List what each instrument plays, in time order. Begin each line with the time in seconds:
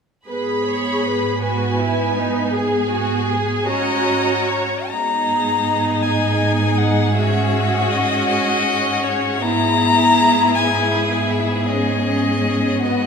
0.28 cello section G#2, viola section B3 G#4, violin section B4 B5
0.67 violin section C#5
1.05 violin section B4
1.41 viola section F#4, violin section B4 G#5
1.78 viola section E4
2.15 viola section D#4
2.52 viola section G#4, violin section G#4 G#5
2.90 viola section F#4
3.28 viola section G#4
3.67 viola section C#4 F#4, violin section C#5 A#5, violin D#5
4.48 violin C#5
4.88 cello section G#2, viola section B3, violin section D#4 G#4, violin A#5
6.02 violin G#5
6.78 violin F#5
7.15 viola section C#4, violin section F#4, violin E5
7.91 violin D#5
8.28 violin D#5
9.03 violin C#5
9.42 cello section G#2, viola section B3, violin section E4 G#4, violin A#5
10.55 violin G#5
11.30 violin E5
11.69 violin section C#4, violin D#5
12.83 violin section B3 F#4, violin D#5